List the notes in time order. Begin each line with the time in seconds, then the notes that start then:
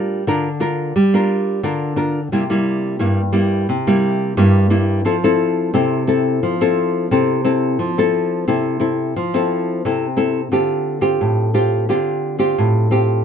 Already playing: G3 D4 F4 A#4
0.27 D3 D4 F4 A#4
0.60 D4 F4 A#4
0.96 G3
1.14 D4 F4 A#4
1.63 D3 D4 F4 A#4
1.96 D4 F4 A#4
2.32 C3 G3 A#3 E4
2.50 G3 A#3 E4
2.99 G2 G3 A#3 E4
3.33 G3 A#3 E4
3.69 C3
3.87 G3 A#3 E4
4.37 G2 G3 A#3 E4
4.70 G3 A#3 E4
5.05 F3 C4 E4 A4
5.24 C4 E4 A4
5.74 C3 C4 E4 A4
6.07 C4 E4 A4
6.43 F3
6.61 C4 E4 A4
7.11 C3 C4 E4 A4
7.45 C4 E4 A4
7.79 F3
7.98 C4 E4 A4
8.48 C3 C4 E4 A4
8.80 C4 E4 A4
9.16 F3
9.34 C4 E4 A4
9.85 C3 C4 E4 A4
10.17 C4 E4 A4
10.52 D3 C4 F4 G4
11.01 C4 F4 G4
11.21 A2
11.54 C4 F4 G4
11.89 D3 C4 F4 G4
12.39 C4 F4 G4
12.58 A2
12.91 C4 F4 G4